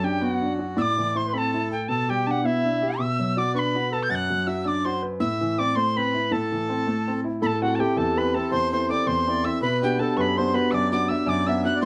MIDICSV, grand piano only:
0, 0, Header, 1, 2, 480
1, 0, Start_track
1, 0, Tempo, 368550
1, 999, Time_signature, 6, 3, 24, 8
1, 15437, End_track
2, 0, Start_track
2, 0, Title_t, "Grand piano"
2, 0, Program_c, 0, 0
2, 0, Note_on_c, 0, 42, 57
2, 46, Note_on_c, 0, 62, 57
2, 267, Note_off_c, 0, 62, 0
2, 274, Note_on_c, 0, 59, 58
2, 536, Note_off_c, 0, 59, 0
2, 547, Note_on_c, 0, 62, 53
2, 766, Note_off_c, 0, 62, 0
2, 771, Note_on_c, 0, 66, 53
2, 954, Note_off_c, 0, 42, 0
2, 991, Note_off_c, 0, 66, 0
2, 1001, Note_on_c, 0, 45, 66
2, 1275, Note_on_c, 0, 52, 53
2, 1492, Note_off_c, 0, 52, 0
2, 1501, Note_on_c, 0, 64, 55
2, 1718, Note_off_c, 0, 64, 0
2, 1733, Note_on_c, 0, 60, 59
2, 1990, Note_off_c, 0, 60, 0
2, 2005, Note_on_c, 0, 64, 55
2, 2219, Note_off_c, 0, 64, 0
2, 2233, Note_on_c, 0, 69, 55
2, 2403, Note_off_c, 0, 45, 0
2, 2446, Note_off_c, 0, 69, 0
2, 2458, Note_on_c, 0, 47, 49
2, 2731, Note_on_c, 0, 55, 49
2, 2943, Note_off_c, 0, 55, 0
2, 2955, Note_on_c, 0, 62, 57
2, 3168, Note_off_c, 0, 62, 0
2, 3170, Note_on_c, 0, 59, 53
2, 3431, Note_off_c, 0, 59, 0
2, 3443, Note_on_c, 0, 62, 51
2, 3661, Note_off_c, 0, 62, 0
2, 3673, Note_on_c, 0, 67, 60
2, 3854, Note_off_c, 0, 47, 0
2, 3889, Note_off_c, 0, 67, 0
2, 3891, Note_on_c, 0, 47, 53
2, 4162, Note_on_c, 0, 54, 49
2, 4381, Note_off_c, 0, 54, 0
2, 4392, Note_on_c, 0, 66, 51
2, 4609, Note_off_c, 0, 66, 0
2, 4621, Note_on_c, 0, 62, 55
2, 4879, Note_off_c, 0, 62, 0
2, 4886, Note_on_c, 0, 66, 54
2, 5104, Note_off_c, 0, 66, 0
2, 5115, Note_on_c, 0, 71, 55
2, 5292, Note_off_c, 0, 47, 0
2, 5332, Note_off_c, 0, 71, 0
2, 5338, Note_on_c, 0, 42, 60
2, 5604, Note_on_c, 0, 54, 47
2, 5824, Note_off_c, 0, 54, 0
2, 5828, Note_on_c, 0, 66, 51
2, 6049, Note_off_c, 0, 66, 0
2, 6059, Note_on_c, 0, 62, 62
2, 6319, Note_off_c, 0, 62, 0
2, 6323, Note_on_c, 0, 66, 54
2, 6543, Note_on_c, 0, 71, 56
2, 6544, Note_off_c, 0, 66, 0
2, 6737, Note_off_c, 0, 42, 0
2, 6767, Note_off_c, 0, 71, 0
2, 6775, Note_on_c, 0, 45, 67
2, 7048, Note_on_c, 0, 52, 57
2, 7267, Note_off_c, 0, 52, 0
2, 7272, Note_on_c, 0, 60, 59
2, 7492, Note_off_c, 0, 60, 0
2, 7499, Note_on_c, 0, 57, 53
2, 7760, Note_off_c, 0, 57, 0
2, 7770, Note_on_c, 0, 60, 55
2, 7989, Note_off_c, 0, 60, 0
2, 7996, Note_on_c, 0, 64, 52
2, 8175, Note_off_c, 0, 45, 0
2, 8214, Note_off_c, 0, 64, 0
2, 8223, Note_on_c, 0, 45, 58
2, 8493, Note_on_c, 0, 52, 48
2, 8710, Note_off_c, 0, 52, 0
2, 8715, Note_on_c, 0, 60, 52
2, 8933, Note_off_c, 0, 60, 0
2, 8948, Note_on_c, 0, 57, 61
2, 9204, Note_off_c, 0, 57, 0
2, 9216, Note_on_c, 0, 60, 52
2, 9431, Note_off_c, 0, 60, 0
2, 9432, Note_on_c, 0, 64, 54
2, 9618, Note_off_c, 0, 45, 0
2, 9652, Note_off_c, 0, 64, 0
2, 9665, Note_on_c, 0, 45, 59
2, 9915, Note_on_c, 0, 60, 41
2, 9924, Note_on_c, 0, 64, 40
2, 9927, Note_on_c, 0, 69, 57
2, 10124, Note_off_c, 0, 60, 0
2, 10129, Note_off_c, 0, 64, 0
2, 10130, Note_off_c, 0, 69, 0
2, 10141, Note_off_c, 0, 45, 0
2, 10143, Note_on_c, 0, 60, 48
2, 10149, Note_on_c, 0, 64, 46
2, 10150, Note_on_c, 0, 69, 53
2, 10376, Note_on_c, 0, 40, 61
2, 10542, Note_off_c, 0, 60, 0
2, 10545, Note_off_c, 0, 64, 0
2, 10546, Note_off_c, 0, 69, 0
2, 10643, Note_on_c, 0, 60, 47
2, 10646, Note_on_c, 0, 64, 48
2, 10654, Note_on_c, 0, 69, 61
2, 10846, Note_off_c, 0, 60, 0
2, 10846, Note_off_c, 0, 64, 0
2, 10851, Note_off_c, 0, 69, 0
2, 10856, Note_off_c, 0, 40, 0
2, 10865, Note_on_c, 0, 60, 48
2, 10865, Note_on_c, 0, 64, 46
2, 10871, Note_on_c, 0, 69, 54
2, 11093, Note_on_c, 0, 40, 51
2, 11262, Note_off_c, 0, 60, 0
2, 11262, Note_off_c, 0, 64, 0
2, 11266, Note_off_c, 0, 69, 0
2, 11361, Note_on_c, 0, 60, 45
2, 11366, Note_on_c, 0, 64, 42
2, 11377, Note_on_c, 0, 69, 56
2, 11564, Note_off_c, 0, 60, 0
2, 11568, Note_off_c, 0, 64, 0
2, 11573, Note_off_c, 0, 40, 0
2, 11573, Note_off_c, 0, 69, 0
2, 11584, Note_on_c, 0, 60, 50
2, 11588, Note_on_c, 0, 64, 48
2, 11593, Note_on_c, 0, 69, 60
2, 11809, Note_on_c, 0, 40, 64
2, 11980, Note_off_c, 0, 60, 0
2, 11983, Note_off_c, 0, 64, 0
2, 11986, Note_off_c, 0, 69, 0
2, 12075, Note_on_c, 0, 60, 47
2, 12081, Note_on_c, 0, 64, 49
2, 12085, Note_on_c, 0, 69, 55
2, 12270, Note_off_c, 0, 60, 0
2, 12282, Note_off_c, 0, 64, 0
2, 12282, Note_off_c, 0, 69, 0
2, 12289, Note_on_c, 0, 60, 52
2, 12290, Note_off_c, 0, 40, 0
2, 12302, Note_on_c, 0, 64, 42
2, 12302, Note_on_c, 0, 69, 56
2, 12476, Note_off_c, 0, 60, 0
2, 12484, Note_off_c, 0, 64, 0
2, 12484, Note_off_c, 0, 69, 0
2, 12520, Note_on_c, 0, 47, 52
2, 12788, Note_on_c, 0, 59, 50
2, 12798, Note_on_c, 0, 62, 45
2, 12804, Note_on_c, 0, 66, 58
2, 12983, Note_off_c, 0, 59, 0
2, 12990, Note_off_c, 0, 62, 0
2, 12996, Note_off_c, 0, 66, 0
2, 13002, Note_on_c, 0, 59, 47
2, 13003, Note_off_c, 0, 47, 0
2, 13010, Note_on_c, 0, 62, 47
2, 13015, Note_on_c, 0, 66, 48
2, 13240, Note_on_c, 0, 42, 66
2, 13405, Note_off_c, 0, 59, 0
2, 13409, Note_off_c, 0, 62, 0
2, 13413, Note_off_c, 0, 66, 0
2, 13512, Note_on_c, 0, 59, 51
2, 13516, Note_on_c, 0, 62, 48
2, 13521, Note_on_c, 0, 66, 55
2, 13709, Note_off_c, 0, 59, 0
2, 13715, Note_off_c, 0, 62, 0
2, 13722, Note_off_c, 0, 42, 0
2, 13723, Note_off_c, 0, 66, 0
2, 13728, Note_on_c, 0, 59, 56
2, 13735, Note_on_c, 0, 62, 48
2, 13742, Note_on_c, 0, 66, 58
2, 13965, Note_on_c, 0, 42, 64
2, 14127, Note_off_c, 0, 59, 0
2, 14131, Note_off_c, 0, 62, 0
2, 14135, Note_off_c, 0, 66, 0
2, 14219, Note_on_c, 0, 59, 45
2, 14226, Note_on_c, 0, 62, 42
2, 14230, Note_on_c, 0, 66, 55
2, 14433, Note_off_c, 0, 59, 0
2, 14437, Note_off_c, 0, 62, 0
2, 14442, Note_off_c, 0, 42, 0
2, 14443, Note_off_c, 0, 66, 0
2, 14453, Note_on_c, 0, 59, 46
2, 14456, Note_on_c, 0, 62, 45
2, 14462, Note_on_c, 0, 66, 51
2, 14671, Note_on_c, 0, 42, 74
2, 14848, Note_off_c, 0, 59, 0
2, 14850, Note_off_c, 0, 62, 0
2, 14853, Note_off_c, 0, 66, 0
2, 14936, Note_on_c, 0, 59, 51
2, 14940, Note_on_c, 0, 62, 43
2, 14944, Note_on_c, 0, 66, 58
2, 15145, Note_off_c, 0, 59, 0
2, 15153, Note_off_c, 0, 42, 0
2, 15153, Note_off_c, 0, 66, 0
2, 15154, Note_off_c, 0, 62, 0
2, 15164, Note_on_c, 0, 59, 50
2, 15173, Note_on_c, 0, 62, 47
2, 15173, Note_on_c, 0, 66, 51
2, 15347, Note_off_c, 0, 59, 0
2, 15352, Note_off_c, 0, 66, 0
2, 15353, Note_off_c, 0, 62, 0
2, 15437, End_track
0, 0, End_of_file